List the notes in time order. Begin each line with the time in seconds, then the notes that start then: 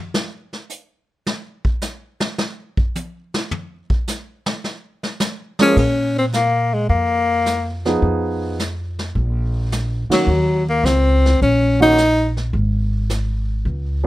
0.14 snare
0.53 snare
0.69 hi-hat pedal
1.27 snare
1.65 kick
1.81 snare, hi-hat pedal
2.20 snare
2.38 snare
2.77 kick
2.95 hi-hat pedal, high tom
3.34 snare
3.51 floor tom
3.90 kick
4.07 snare, hi-hat pedal
4.46 snare
4.64 snare
5.03 snare
5.20 snare, hi-hat pedal
5.59 F3 G#3 A#3 C#4 G#4, snare
5.77 A#2 C#4, brush sweep, kick, crash
6.18 C4
6.33 A#3, snare, hi-hat pedal
6.74 G#3
6.89 F2 A#3, brush sweep, kick
7.46 snare, hi-hat pedal
7.85 F3 B3 D#4 G#4, snare
8.02 F2, brush sweep, kick
8.59 snare, hi-hat pedal
8.99 snare
9.15 A#1, brush sweep, kick
9.72 snare, hi-hat pedal
10.09 D#3 F#3 A#3 C#4 F#4, muted upright bass stroke, snare, ride
10.27 D#2, brush sweep
10.69 A#3
10.84 C#2 C4, snare, hi-hat pedal
11.26 snare
11.42 A#1 C#4, brush sweep, kick
11.80 D#3 A#3 C#4 D#4 F#4
11.98 snare, hi-hat pedal
12.37 snare
12.53 G#1, brush sweep, kick
13.10 snare, hi-hat pedal
13.65 C#2, brush sweep, kick
14.04 F3